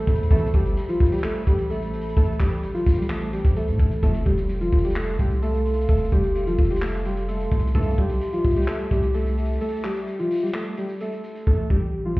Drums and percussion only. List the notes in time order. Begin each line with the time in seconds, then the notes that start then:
0.07 kick, closed hi-hat
0.15 closed hi-hat
0.23 closed hi-hat
0.31 kick, closed hi-hat
0.38 closed hi-hat
0.46 closed hi-hat
0.54 kick, closed hi-hat
0.66 closed hi-hat
0.77 closed hi-hat
0.89 closed hi-hat
1.00 kick, closed hi-hat
1.06 closed hi-hat
1.12 closed hi-hat
1.18 closed hi-hat
1.24 clap, closed hi-hat
1.35 closed hi-hat
1.47 kick, closed hi-hat
1.59 closed hi-hat
1.70 closed hi-hat
1.82 closed hi-hat
1.94 closed hi-hat
2.01 closed hi-hat
2.09 closed hi-hat
2.17 kick, closed hi-hat
2.25 closed hi-hat
2.32 closed hi-hat
2.40 kick, clap, closed hi-hat
2.52 closed hi-hat
2.63 closed hi-hat
2.75 closed hi-hat
2.86 kick, closed hi-hat, open hi-hat
2.94 closed hi-hat
3.02 closed hi-hat
3.10 clap, closed hi-hat
3.21 closed hi-hat
3.33 closed hi-hat
3.45 kick, closed hi-hat
3.56 closed hi-hat
3.68 closed hi-hat
3.79 kick, closed hi-hat
3.91 closed hi-hat
4.03 kick, closed hi-hat
4.14 closed hi-hat
4.26 kick, closed hi-hat
4.38 closed hi-hat
4.49 closed hi-hat
4.61 closed hi-hat
4.73 kick, closed hi-hat
4.78 closed hi-hat
4.84 closed hi-hat
4.90 closed hi-hat
4.96 clap, closed hi-hat
5.08 closed hi-hat
5.19 kick, closed hi-hat
5.31 closed hi-hat
5.42 closed hi-hat
5.54 closed hi-hat
5.66 closed hi-hat
5.73 closed hi-hat
5.81 closed hi-hat
5.89 kick, closed hi-hat
5.97 closed hi-hat
6.04 closed hi-hat
6.12 kick, closed hi-hat
6.24 closed hi-hat
6.35 closed hi-hat
6.47 closed hi-hat
6.59 kick, closed hi-hat
6.64 closed hi-hat
6.70 closed hi-hat
6.76 closed hi-hat
6.82 clap, closed hi-hat
6.94 closed hi-hat
7.05 closed hi-hat
7.17 closed hi-hat
7.28 closed hi-hat
7.40 closed hi-hat
7.52 kick, closed hi-hat
7.60 closed hi-hat
7.67 closed hi-hat
7.75 kick, closed hi-hat
7.83 closed hi-hat
7.90 closed hi-hat
7.98 kick, closed hi-hat
8.10 closed hi-hat
8.21 closed hi-hat
8.33 closed hi-hat
8.45 kick, closed hi-hat
8.50 closed hi-hat
8.56 closed hi-hat
8.62 closed hi-hat
8.68 clap, closed hi-hat
8.79 closed hi-hat
8.91 kick, closed hi-hat
9.03 closed hi-hat
9.14 closed hi-hat
9.26 closed hi-hat
9.38 closed hi-hat
9.45 closed hi-hat
9.53 closed hi-hat
9.61 closed hi-hat
9.69 closed hi-hat
9.76 closed hi-hat
9.84 clap, closed hi-hat
9.96 closed hi-hat
10.07 closed hi-hat
10.19 closed hi-hat
10.31 closed hi-hat, open hi-hat
10.38 closed hi-hat
10.46 closed hi-hat
10.54 clap, closed hi-hat
10.66 closed hi-hat
10.77 closed hi-hat
10.89 closed hi-hat
11.01 closed hi-hat
11.12 closed hi-hat
11.24 closed hi-hat
11.35 closed hi-hat
11.47 kick
11.70 kick
12.17 kick